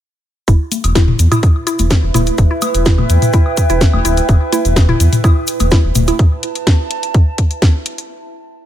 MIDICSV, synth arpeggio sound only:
0, 0, Header, 1, 2, 480
1, 0, Start_track
1, 0, Key_signature, 1, "minor"
1, 0, Tempo, 476190
1, 482, Time_signature, 4, 2, 24, 8
1, 8726, End_track
2, 0, Start_track
2, 0, Title_t, "Synth arpeggio sound"
2, 0, Program_c, 0, 84
2, 481, Note_on_c, 0, 64, 84
2, 516, Note_off_c, 0, 64, 0
2, 962, Note_on_c, 0, 64, 82
2, 996, Note_off_c, 0, 64, 0
2, 1327, Note_on_c, 0, 64, 79
2, 1374, Note_off_c, 0, 64, 0
2, 1681, Note_on_c, 0, 64, 77
2, 1716, Note_off_c, 0, 64, 0
2, 2162, Note_on_c, 0, 64, 77
2, 2196, Note_off_c, 0, 64, 0
2, 2527, Note_on_c, 0, 64, 78
2, 2574, Note_off_c, 0, 64, 0
2, 2882, Note_on_c, 0, 64, 83
2, 2916, Note_off_c, 0, 64, 0
2, 3361, Note_on_c, 0, 64, 81
2, 3396, Note_off_c, 0, 64, 0
2, 3727, Note_on_c, 0, 64, 78
2, 3774, Note_off_c, 0, 64, 0
2, 4081, Note_on_c, 0, 64, 77
2, 4116, Note_off_c, 0, 64, 0
2, 4560, Note_on_c, 0, 64, 77
2, 4596, Note_off_c, 0, 64, 0
2, 4926, Note_on_c, 0, 64, 79
2, 4974, Note_off_c, 0, 64, 0
2, 5281, Note_on_c, 0, 64, 83
2, 5316, Note_off_c, 0, 64, 0
2, 5761, Note_on_c, 0, 64, 86
2, 5796, Note_off_c, 0, 64, 0
2, 6127, Note_on_c, 0, 64, 77
2, 6175, Note_off_c, 0, 64, 0
2, 8726, End_track
0, 0, End_of_file